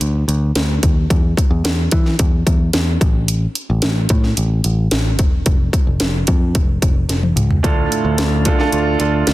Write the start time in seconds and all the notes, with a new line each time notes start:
0.01 D2, closed hi-hat
0.28 D2, closed hi-hat
0.55 D2, snare, closed hi-hat
0.83 D#2, kick, closed hi-hat
1.10 E2, kick, closed hi-hat
1.37 kick, closed hi-hat
1.51 E2
1.64 E2, snare, closed hi-hat
1.91 E3, kick, closed hi-hat
2.06 snare
2.19 E2, kick, closed hi-hat
2.47 E2, kick, closed hi-hat
2.73 E2, snare, closed hi-hat
3.01 A1, kick, closed hi-hat
3.28 closed hi-hat
3.55 closed hi-hat
3.70 A1
3.82 A1, snare, closed hi-hat
4.09 A2, kick, closed hi-hat
4.24 snare
4.37 A1, closed hi-hat
4.64 A1, closed hi-hat
4.91 A1, snare, closed hi-hat
5.19 E1, kick, closed hi-hat
5.46 F1, kick, closed hi-hat
5.73 kick, closed hi-hat
5.87 F1
6.00 F1, snare, closed hi-hat
6.27 F2, kick, closed hi-hat
6.55 F1, kick, closed hi-hat
6.82 F1, kick, closed hi-hat
7.09 F1, snare, closed hi-hat
7.23 high tom
7.36 C#2, closed hi-hat, mid tom
7.51 floor tom
7.63 D2 A2 D3 A3 D4 F4 A4, kick, closed hi-hat
7.92 closed hi-hat
8.05 D2
8.18 D2, snare, closed hi-hat
8.45 D3 D4 F4 A4, kick, closed hi-hat
8.59 D4 F4 A4, snare
8.72 D2, closed hi-hat
8.99 D2 D4 F4 A4, closed hi-hat
9.27 D2, snare, closed hi-hat